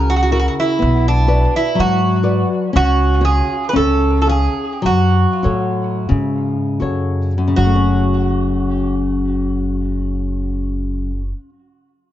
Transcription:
Already playing: C#2 C#3 E4 F#4 A#4
0.10 F#4
0.16 F#4
0.23 F#4
0.31 E4 F#4 A#4
0.40 F#4
0.48 F#4
0.60 E4
0.79 B1 B3
1.08 D4
1.27 F#4 B4 D5
1.56 E4
1.75 G#2 F#3
1.80 F#4
2.23 F#4 B4 D5
2.73 C#2 C#4 F#4
3.21 F#4 G#4 C#5
3.25 G#4
3.69 B4
3.73 C#2 C#4 A4
4.22 A4
4.26 G#4 C#5 F5
4.82 F#2 F#3 F#4
5.43 A2 F#4 A4 C#5
6.09 G#2 C#3
6.80 F#2 F#4 A4 C#5
7.38 F#2
7.48 C#3
7.56 F#1 F#3 F#4
7.66 A3
7.76 C#4

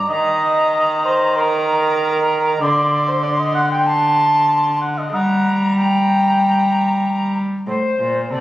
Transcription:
0.10 D#3 D#5 A#5
1.05 C5
1.36 A#4 C6
1.40 A#5
2.60 D3 D5 C6
3.08 C5
3.23 D5
3.40 D#5
3.55 F#5
3.72 G5
3.86 A5 C6
4.81 F#5
4.98 D#5
5.13 G3 F#5 A#5
5.77 G5 A#5
7.67 A2 C5
7.99 A#2
8.31 C3 A4 D5

